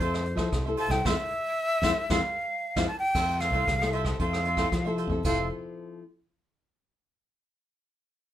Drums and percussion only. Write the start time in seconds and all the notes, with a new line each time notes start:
0.00 kick, closed hi-hat
0.14 cross-stick, closed hi-hat
0.25 closed hi-hat
0.37 kick, cross-stick, closed hi-hat
0.52 kick, cross-stick, closed hi-hat
0.67 closed hi-hat
0.78 closed hi-hat
0.90 kick, cross-stick
1.05 kick, snare
1.83 kick, snare
2.10 kick, snare
2.76 kick, snare
3.15 kick, cross-stick, crash
3.29 closed hi-hat
3.40 cross-stick, closed hi-hat
3.52 kick, closed hi-hat
3.67 kick, cross-stick, closed hi-hat
3.82 cross-stick, closed hi-hat
3.93 closed hi-hat
4.05 kick, cross-stick, closed hi-hat
4.20 kick, closed hi-hat
4.33 cross-stick
4.45 closed hi-hat
4.57 kick, cross-stick, closed hi-hat
4.72 kick, cross-stick, closed hi-hat
4.86 closed hi-hat
4.98 closed hi-hat
5.10 kick
5.25 kick, crash